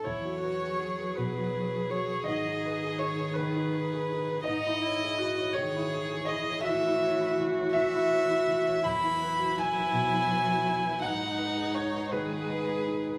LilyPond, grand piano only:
\new Staff \with { instrumentName = "Grand piano" } { \time 6/8 \key e \major \tempo 4. = 55 << { cis''4. b'4 cis''8 | dis''4 cis''8 b'4. | dis''4. cis''4 dis''8 | e''4 r8 e''4. |
b''4 gis''2 | fis''4 cis''8 b'4. | } \\ { e,16 fis'16 b'16 gis'16 fis'16 b'16 b,16 fis'16 b'16 gis'16 fis'16 b'16 | gis,16 dis'16 b'16 gis'16 dis'16 b'16 dis16 dis'16 b'16 gis'16 dis'16 b'16 | gis,16 e'16 cis''16 gis'16 e'16 cis''16 dis16 e'16 cis''16 gis'16 e'16 cis''16 | a,16 e'16 cis''16 e'16 e16 cis''16 e16 e'16 cis''16 e'16 e16 cis''16 |
e,16 e'16 b'16 fis'16 e'16 b'16 b,16 e'16 b'16 fis'16 e'16 b'16 | gis,16 dis'16 b'16 gis'16 dis'16 b'16 dis16 dis'16 b'16 gis'16 dis'16 b'16 | } >> }